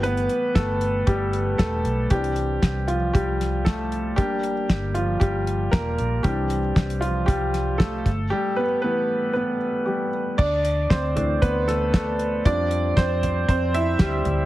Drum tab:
CC |----------------|----------------|----------------|----------------|
HH |xxx-x-x-x-x-x-x-|xxx-x-x-x-x-x-x-|x-x-x-x-x-x-x-x-|x-x-xxx-x-x-x-x-|
SD |----o-------o---|----o-----o-o---|----o-------o---|----o-----o-o---|
FT |----------------|----------------|----------------|----------------|
BD |----o---o---o---|o---o---o---o---|o---o---o---o---|o---o---o---o-o-|

CC |----------------|x---------------|----------------|
HH |----------------|--x-x-x-x-x-x-x-|x-x-x-x-x-x-x-x-|
SD |----------------|----o-----o-o---|----o-------o---|
FT |----------------|------o---------|------o-------o-|
BD |----------------|o---o---o---o---|o---o---o---o---|